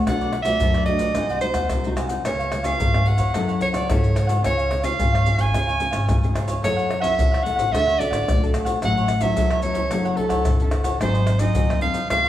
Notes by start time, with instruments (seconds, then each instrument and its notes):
0.06 upright bass B1, nylon-string guitar B2 A3 D4 F#4, cavaquinho D4 A4 B4 D5, soprano saxophone F#5, pandeiro, tamborim, maracas, surdo
0.21 cavaquinho A4 B4 D5, pandeiro, maracas
0.33 muted cavaquinho stroke, pandeiro, tamborim
0.43 nylon-string guitar A3 D4, cavaquinho B4 D5, soprano saxophone E5, pandeiro, maracas, surdo
0.47 nylon-string guitar F#4, cavaquinho A4
0.60 upright bass F#2, nylon-string guitar F#2, cavaquinho D4 A4 B4 D5, pandeiro, maracas, surdo
0.74 cavaquinho A4 B4 D5, pandeiro, tamborim, maracas
0.86 nylon-string guitar A3 D4 F#4, soprano saxophone D#5, pandeiro
0.99 upright bass B1, cavaquinho A4 B4 D5, pandeiro, maracas, surdo
1.15 upright bass C2, nylon-string guitar C3 G#3 D#4 F#4, cavaquinho D#4 G#4 C5 F#5, pandeiro, tamborim, maracas, surdo
1.29 cavaquinho G#4 C5 F#5, pandeiro, maracas
1.41 nylon-string guitar G#3 D#4 F#4, soprano saxophone C5, muted cavaquinho stroke, pandeiro, maracas, surdo
1.53 upright bass D#2, cavaquinho G#4 C5 F#5, pandeiro, tamborim, maracas, surdo
1.70 upright bass C2, nylon-string guitar C3, pandeiro, tamborim, maracas, surdo
1.84 nylon-string guitar G#3 D#4 F#4, pandeiro, maracas
1.95 cavaquinho D#4 G#4 C5 F#5, pandeiro, tamborim, maracas, surdo
2.08 cavaquinho G#4 C5 F#5, pandeiro, maracas
2.25 upright bass C#2, nylon-string guitar C#3 B3 F4 G#4, cavaquinho F4 B4 C#5 F5, soprano saxophone C#5, pandeiro, tamborim, maracas, surdo
2.39 cavaquinho B4 C#5 F5, pandeiro, maracas
2.51 nylon-string guitar B3 F4 G#4, muted cavaquinho stroke, pandeiro, tamborim, maracas
2.63 nylon-string guitar B3 F4 G#4, cavaquinho B4 C#5 F5, soprano saxophone F5, pandeiro, maracas, surdo
2.78 upright bass G#1, nylon-string guitar G#2, cavaquinho F4 B4 C#5 F5, pandeiro, maracas, surdo
2.94 nylon-string guitar B3 F4 G#4, cavaquinho B4 C#5 F5, pandeiro, tamborim, maracas
3.06 soprano saxophone F#5, pandeiro
3.17 upright bass F2, cavaquinho B4 C#5 F5, pandeiro, maracas, surdo
3.33 upright bass F#2, nylon-string guitar F#3 C#4 E4 A4, cavaquinho E4 A4 C#5 F#5, pandeiro, tamborim, maracas, surdo
3.48 cavaquinho A4 C#5 F#5, pandeiro, maracas
3.59 soprano saxophone C#5, muted cavaquinho stroke, pandeiro, maracas, surdo
3.72 upright bass C#2, cavaquinho A4 C#5 F#5, soprano saxophone D5, pandeiro, tamborim, maracas, surdo
3.90 upright bass G#2, nylon-string guitar C#3 C#4 E4 A4, soprano saxophone C#5, pandeiro, tamborim, maracas, surdo
4.04 pandeiro, maracas
4.14 cavaquinho E4 A4 C#5 F#5, pandeiro, tamborim, maracas
4.27 cavaquinho A4 C#5 F#5, pandeiro, maracas
4.42 upright bass C#2, nylon-string guitar C#3 C#4 F4 G#4, cavaquinho F4 G#4 C#5 F5, soprano saxophone C#5, pandeiro, tamborim, maracas, surdo
4.57 cavaquinho G#4 C#5 F5, pandeiro, maracas
4.69 muted cavaquinho stroke, pandeiro, tamborim
4.81 nylon-string guitar C#4 F4 G#4, cavaquinho G#4 C#5 F5, soprano saxophone F5, pandeiro, maracas, surdo
4.99 upright bass G#1, nylon-string guitar G#2, cavaquinho F4 G#4 C#5 F5, pandeiro, maracas, surdo
5.12 cavaquinho G#4 C#5 F5, pandeiro, tamborim, maracas
5.26 nylon-string guitar C#4 F4 G#4, pandeiro, maracas
5.37 upright bass G#1, cavaquinho G#4 C#5 F5, pandeiro, maracas, surdo
5.41 soprano saxophone G#5
5.53 upright bass C#2, nylon-string guitar C#3 C#4 F4 G#4, cavaquinho F4 G#4 C#5 F5, pandeiro, tamborim, maracas, surdo
5.67 cavaquinho G#4 C#5 F5, pandeiro, maracas
5.79 nylon-string guitar C#4 F4 G#4, muted cavaquinho stroke, pandeiro, maracas, surdo
5.91 upright bass G#1, cavaquinho G#4 C#5 F5, pandeiro, tamborim, maracas, surdo
6.09 upright bass C#2, nylon-string guitar G#2, pandeiro, tamborim, maracas, surdo
6.23 nylon-string guitar C#4 F4 G#4, pandeiro, maracas
6.34 cavaquinho F4 G#4 C#5 F5, pandeiro, tamborim, maracas
6.47 cavaquinho G#4 C#5 F5, pandeiro, maracas
6.62 upright bass F#2, nylon-string guitar F#3 C#4 E4 A4, cavaquinho E4 A4 C#5 F#5, soprano saxophone C#5, pandeiro, tamborim, maracas, surdo
6.76 cavaquinho A4 C#5 F#5, pandeiro, maracas
6.89 muted cavaquinho stroke, pandeiro, tamborim
7.00 nylon-string guitar C#4 E4 A4, cavaquinho A4 C#5 F#5, soprano saxophone E5, pandeiro, maracas, surdo
7.17 upright bass C#2, nylon-string guitar C#3, cavaquinho E4 A4 C#5 F#5, pandeiro, maracas, surdo
7.32 cavaquinho A4 C#5 F#5, pandeiro, tamborim, maracas
7.43 nylon-string guitar C#4 E4 A4, soprano saxophone F#5, pandeiro, maracas
7.56 upright bass A1, cavaquinho A4 C#5 F#5, pandeiro, maracas, surdo
7.71 upright bass D2, nylon-string guitar D3 C#4 F#4 A4, cavaquinho D4 A4 C#5 F#5, soprano saxophone E5, pandeiro, tamborim, maracas, surdo
7.87 cavaquinho A4 C#5 F#5, pandeiro, maracas
7.99 nylon-string guitar C#4 F#4 A4, soprano saxophone D5, muted cavaquinho stroke, pandeiro, maracas, surdo
8.10 upright bass A1, cavaquinho A4 F#5, pandeiro, tamborim, maracas, surdo
8.28 upright bass B1, nylon-string guitar A2, pandeiro, tamborim, maracas, surdo
8.43 nylon-string guitar C#4 F#4 A4, pandeiro, maracas
8.52 cavaquinho D4 A4 C#5 F#5, pandeiro, tamborim, maracas
8.65 cavaquinho A4 C#5 F#5, pandeiro, maracas
8.82 upright bass A1, nylon-string guitar A2 F#3 C#4 E4, cavaquinho F#4 A4 C#5 E5, soprano saxophone F#5, pandeiro, tamborim, maracas, surdo
8.96 cavaquinho A4 C#5 E5, pandeiro, maracas
9.08 pandeiro, tamborim, maracas
9.20 nylon-string guitar F#3 C#4 E4, cavaquinho A4 C#5 E5, soprano saxophone E5, pandeiro, maracas, surdo
9.36 upright bass E2, nylon-string guitar E3, cavaquinho F#4 A4 C#5 E5, pandeiro, maracas, surdo
9.50 cavaquinho A4 C#5 E5, pandeiro, tamborim, maracas
9.62 nylon-string guitar F#3 C#4 E4, soprano saxophone C#5, pandeiro, maracas
9.73 upright bass C#2, cavaquinho A4 C#5 E5, pandeiro, maracas, surdo
9.90 upright bass F#1, nylon-string guitar F#3 C#4 E4 A4, cavaquinho E4 A4 C#5 F#5, pandeiro, tamborim, maracas, surdo
10.05 cavaquinho A4 C#5 F#5, pandeiro, maracas
10.16 nylon-string guitar C#4 E4 A4, soprano saxophone A4, muted cavaquinho stroke, pandeiro, surdo
10.29 upright bass C#2, cavaquinho A4 C#5 F#5, pandeiro, tamborim, maracas, surdo
10.45 upright bass G1, nylon-string guitar C#3, pandeiro, tamborim, maracas, surdo
10.60 nylon-string guitar C#4 E4 A4, pandeiro, maracas
10.71 cavaquinho E4 A4 C#5 F#5, pandeiro, tamborim, maracas
10.84 cavaquinho A4 C#5 F#5, pandeiro, maracas
10.99 upright bass G#1, nylon-string guitar G#2 F#3 C4 D#4, cavaquinho F#4 G#4 C5 D#5, soprano saxophone C5, pandeiro, tamborim, maracas, surdo
11.14 cavaquinho G#4 C5 D#5, pandeiro, maracas
11.26 muted cavaquinho stroke, pandeiro, tamborim, maracas
11.39 nylon-string guitar F#3 C4 D#4, cavaquinho G#4 C5 D#5, soprano saxophone D#5, pandeiro, maracas, surdo
11.55 upright bass D#2, nylon-string guitar D#3, cavaquinho F#4 G#4 C5 D#5, pandeiro, maracas, surdo
11.69 cavaquinho G#4 C5 D#5, pandeiro, tamborim, maracas
11.81 nylon-string guitar F#3 C4 D#4, soprano saxophone F5, pandeiro
11.94 upright bass C2, cavaquinho G#4 C5 D#5, pandeiro, maracas, surdo
12.10 upright bass C#2, nylon-string guitar C#3 G#3 B3 F4, cavaquinho F4 B4 C#5, soprano saxophone F5, pandeiro, tamborim, maracas, surdo
12.24 cavaquinho B4 C#5 F5, pandeiro, maracas